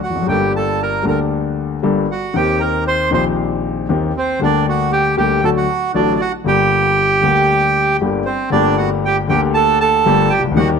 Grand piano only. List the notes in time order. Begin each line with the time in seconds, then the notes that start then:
0.10 E2
0.15 F2
0.22 F#2
0.26 G1 G2 G3 A#3 D4
0.30 A4
1.03 D2 D3 G3 A#3 D4
1.07 A4
1.82 G1 G2 G3 A#3 D4 A4
2.34 D#2 D#3 A#3 C4 G4
3.11 A#1 A#2 D#3 A#3 C4 G4
3.89 D#2 D#3 A#3 C4 G4
4.41 D2 D3 G3 A#3 G4
5.17 D2 D3 G3 A#3 G4
5.43 D2 D3 F#3 A3 F#4
5.94 A1 A2 D3 F#3 A3 F#4
6.44 G1 G2 D3 G3 A#3 G4
7.23 D2 D3 G3 A#3 G4
8.01 G1 G2 D3 G3 A#3 G4
8.50 G1 G2 D3 A3 A#3 G4
9.27 D2 D3 A3 A#3
9.32 G4
10.05 G1 G2 D3 A3 A#3 G4
10.39 C2
10.44 C#2
10.51 D2 D#3
10.56 D#2 D#3 G3 A#3 G4